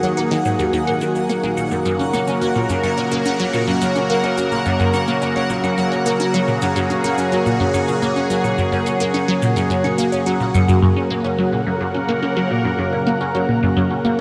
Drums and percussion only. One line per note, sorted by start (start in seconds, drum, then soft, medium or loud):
0.03 cabasa soft
0.17 cabasa soft
0.17 claves medium
0.31 cabasa soft
0.45 cabasa medium
0.59 cabasa soft
0.59 claves soft
0.73 cabasa medium
0.87 cabasa soft
0.87 claves medium
1.01 cabasa medium
1.15 cabasa medium
1.29 cabasa medium
1.29 claves soft
1.43 cabasa soft
1.57 cabasa medium
1.57 claves medium
1.71 cabasa soft
1.85 cabasa soft
1.85 claves soft
1.99 cabasa soft
2.14 cabasa medium
2.14 claves medium
2.27 cabasa soft
2.41 cabasa soft
2.56 cabasa soft
2.56 claves soft
2.69 cabasa medium
2.83 cabasa soft
2.83 claves medium
2.97 cabasa soft
3.11 cabasa soft
3.25 cabasa medium
3.25 claves soft
3.39 cabasa soft
3.53 cabasa soft
3.53 claves medium
3.67 cabasa soft
3.81 cabasa medium
3.95 cabasa soft
3.95 claves soft
4.09 cabasa soft
4.23 cabasa soft
4.23 claves medium
4.38 cabasa medium
4.52 cabasa soft
4.66 cabasa soft
4.66 claves soft
4.80 cabasa soft
4.94 cabasa medium
4.94 claves medium
5.08 cabasa soft
5.22 cabasa soft
5.36 cabasa soft
5.36 claves soft
5.50 cabasa medium
5.64 cabasa soft
5.64 claves medium
5.78 cabasa medium
5.92 cabasa soft
6.06 cabasa medium
6.06 claves soft
6.20 cabasa soft
6.34 cabasa soft
6.34 claves medium
6.48 cabasa soft
6.62 cabasa medium
6.76 cabasa soft
6.76 claves soft
6.90 cabasa soft
7.04 cabasa soft
7.04 claves medium
7.18 cabasa medium
7.32 cabasa soft
7.46 cabasa medium
7.46 claves soft
7.60 cabasa soft
7.74 cabasa medium
7.74 claves medium
7.88 cabasa soft
8.02 cabasa soft
8.16 cabasa soft
8.16 claves soft
8.30 cabasa medium
8.44 cabasa soft
8.44 claves medium
8.58 cabasa soft
8.72 cabasa soft
8.86 cabasa medium
8.86 claves soft
9.00 cabasa soft
9.14 cabasa soft
9.14 claves medium
9.28 cabasa soft
9.42 cabasa medium
9.56 cabasa soft
9.56 claves soft
9.71 cabasa soft
9.84 cabasa soft
9.84 claves medium
9.98 cabasa medium
10.13 cabasa soft
10.26 cabasa soft
10.26 claves soft
10.41 cabasa soft
10.55 cabasa medium
10.55 claves medium
10.69 cabasa soft